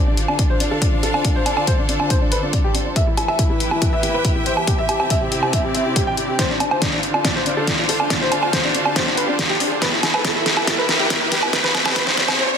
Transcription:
Already playing: D3 C4 D4 F4 G4 A4 C5 D5 F5, riser
0.07 D4
0.17 closed hi-hat
0.28 D4, low woodblock
0.39 D4, kick, closed hi-hat
0.50 C5
0.60 D4, closed hi-hat
0.71 A4
0.82 D4, kick, closed hi-hat
0.93 D4
1.03 A4, closed hi-hat
1.14 D4, low woodblock
1.25 D4, kick, closed hi-hat
1.36 C5
1.46 D4, closed hi-hat, low woodblock
1.57 D4, low woodblock
1.67 C5, kick, closed hi-hat
1.78 D4
1.89 D4, closed hi-hat
2.00 D4, low woodblock
2.10 C5, kick, closed hi-hat
2.21 D4
2.32 B4, closed hi-hat
2.43 D4
2.53 D4, kick, closed hi-hat
2.64 G4
2.75 D4, closed hi-hat
2.86 D4
2.96 E3 E4 G4 B4 E5, kick, closed hi-hat
3.07 E4
3.16 E4 B4 E5, closed hi-hat, low woodblock
3.28 E5, low woodblock
3.39 E4, kick, closed hi-hat
3.50 E4
3.60 G5, closed hi-hat
3.71 E4, low woodblock
3.82 E4, kick, closed hi-hat
3.93 E5
4.03 E4, closed hi-hat
4.14 B4
4.25 E4, kick, closed hi-hat
4.36 E4
4.46 C5, closed hi-hat
4.57 G4, low woodblock
4.67 C3 C4 E4 G4, kick, closed hi-hat
4.78 E5
4.83 D5
4.89 G4, closed hi-hat, low woodblock
4.99 G4, low woodblock
5.10 E5, kick, closed hi-hat
5.21 G4
5.32 G4, closed hi-hat
5.43 G4, low woodblock
5.53 E5, kick, closed hi-hat
5.64 G4
5.75 E5, closed hi-hat
5.86 G4
5.96 G4, kick, closed hi-hat
6.07 G5
6.17 G4, closed hi-hat
6.28 G4
6.39 D3 D4 F4 C5, kick, snare, closed hi-hat
6.50 D4
6.60 D4, closed hi-hat, low woodblock
6.68 A4 C5 F5, low woodblock
6.82 D4, kick, snare, closed hi-hat
6.93 D4
7.03 closed hi-hat
7.14 D4, low woodblock
7.25 D4, kick, snare, closed hi-hat
7.36 C5
7.46 D4, closed hi-hat
7.57 A4
7.67 D4, kick, snare, closed hi-hat
7.79 D4
7.89 A4, open hi-hat
8.00 D4, low woodblock
8.10 D4, kick, snare, closed hi-hat
8.21 C5
8.32 D4, closed hi-hat, low woodblock
8.43 D4, low woodblock
8.53 C5, kick, snare, closed hi-hat
8.64 D4
8.75 D4, closed hi-hat
8.86 D4, low woodblock
8.96 C5, kick, snare, closed hi-hat
9.07 D4
9.17 B4, closed hi-hat
9.28 D4
9.39 D4, kick, snare, closed hi-hat
9.50 G4
9.60 D4, open hi-hat
9.71 D4
9.82 E3 E4 G4 B4, kick, snare, closed hi-hat
9.88 B4
9.93 E4
9.98 E5
10.03 E4, snare, closed hi-hat, low woodblock
10.14 B4, low woodblock
10.25 E4, kick, snare, closed hi-hat
10.36 E4
10.46 snare, closed hi-hat
10.57 E4 G5, low woodblock
10.67 E4, kick, snare, closed hi-hat
10.78 B4
10.89 E4, snare, closed hi-hat
11.00 G4
11.10 E4, kick, snare, closed hi-hat
11.21 E4
11.32 G4, snare, open hi-hat
11.43 C4, low woodblock
11.53 C3 C4, kick, snare, closed hi-hat
11.64 G4 B4, snare
11.75 C4, snare, closed hi-hat, low woodblock
11.86 C4, snare, low woodblock
11.96 B4, kick, snare, closed hi-hat
12.07 C4, snare
12.12 D5
12.17 C4, snare, closed hi-hat
12.28 C4, snare, low woodblock
12.39 C5, swell
12.50 C4

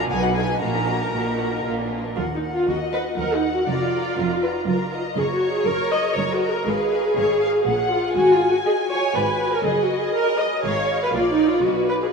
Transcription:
Already playing: A#3 D4 A#4
0.09 B1 B2 B3 G#4 G#5
0.23 D#4 F#4 B4 F#5
0.37 B3 G#4 G#5
0.49 D#4 B4
0.61 A#1 A#2 A#3 F#4 A#4 A#5
0.75 D#4 A#4
0.87 A#3 F#4
1.00 D#4 A#4
1.13 A#1 A#2 A#3 F#4
1.26 D#4 A#4
1.39 A#3 F#4
1.52 D#4 A#4
1.65 A#1 A#2 A#3 F4
1.78 D4 A#4
1.90 A#3 F4
2.04 D4 A#4
2.17 D#2 F4 F#5
2.36 D#4
2.43 F#5
2.52 F4
2.67 D#2 F#4 D#5 F#5
2.92 B4 F#5
3.17 D#2 A#4 F#5
3.36 D#4
3.43 F#5
3.52 F#4
3.68 F1 F2 F4 D5 A#5
3.93 A#5
4.17 F1 F2 A#4 A#5
4.43 B4 A#5
4.67 F#1 F#2 A#4 A#5
4.93 D#5 A#5
5.17 F#1 F#2 G#4 C#5 A#5
5.35 F#4
5.43 A#5
5.52 G#4
5.67 F#1 F#2 A#4 A#5
5.91 D#5 A#5
6.16 F#1 F#2 A#4 C#5 A#5
6.34 F#4
6.42 A#5
6.51 A#4
6.66 G#1 G#2 G#4 B4 F5
6.91 F5
7.16 G#1 G#2 C#5 F5
7.41 F5
7.66 A#1 A#2 F#5
7.91 F4 F#5
8.15 G#1 G#2 F#4 G#5
8.34 F4
8.50 F#4
8.65 G#4 D#5
8.91 C#5
9.15 G#1 G#2 B4 D5
9.54 A#4
9.65 F#1 F#2 G#4 D#5
9.83 F#4
9.99 G#4
10.15 A#4 D#5
10.40 D#5
10.64 G#1 G#2 C#5 D#5 F5
11.03 B4
11.14 A#1 A#2 F4 D5
11.32 D#4
11.48 F4
11.64 B1 B2 F#4 B4 D#5
11.89 B4
12.02 G#4

